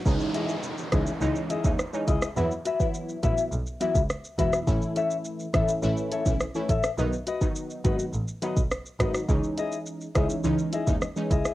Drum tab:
HH |--x---x---x---x-|--x---x---x---x-|--x---x---x---x-|--x---x---x---x-|
SH |xxxxxxxxxxxxxxxx|xxxxxxxxxxxxxxxx|xxxxxxxxxxxxxxxx|xxxxxxxxxxxxxxxx|
SD |------r-----r--r|------------r--r|------r-----r--r|------------r-rr|
BD |o-----o----o--o-|---o--o----o--o-|o-----o----o--o-|---o--o----o--o-|

HH |--x---x---x---x-|
SH |xxxxxxxxxxxxxxxx|
SD |------r-----r--r|
BD |o-----o----o--o-|